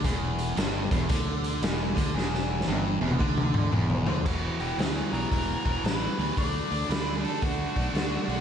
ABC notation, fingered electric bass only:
X:1
M:4/4
L:1/8
Q:"Swing" 1/4=114
K:Dlyd
V:1 name="Fingered electric bass" clef=bass
E,,,2 =G,,, E,,, D,,2 E,,, D,, | E,,,2 =G,,, E,,, D,,2 E,,, D,, | E,,, E,,, D,, B,,, E,,, E,,, A,,, D,, | D,, D,, D,,2 D,, B,,, D,, B,,, |]